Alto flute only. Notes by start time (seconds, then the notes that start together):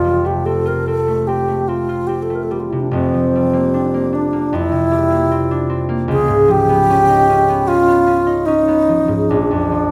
Already playing: F4
0.26 G4
0.46 A4
0.67 A#4
0.86 A4
1.27 G4
1.68 F4
2.07 G4
2.22 A4
2.35 A#4
2.43 A4
2.52 G4
2.60 F4
2.70 E4
2.81 D4
2.93 C4
4.15 D4
4.55 E4
6.12 G#4
6.51 G4
7.68 F4
8.46 D#4
9.29 D4